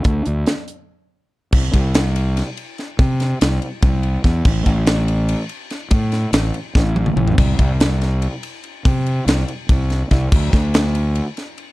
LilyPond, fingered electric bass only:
\new Staff \with { instrumentName = "Fingered electric bass" } { \clef bass \time 7/8 \key d \mixolydian \tempo 4 = 143 d,8 d,8 r2 r8 | c,8 c,2 r4 | c4 c,8 r8 c,4 e,8 | a,,8 a,,2 r4 |
a,4 a,,8 r8 a,,4 a,,8 | c,8 c,2 r4 | c4 c,8 r8 c,4 c,8 | d,8 d,2 r4 | }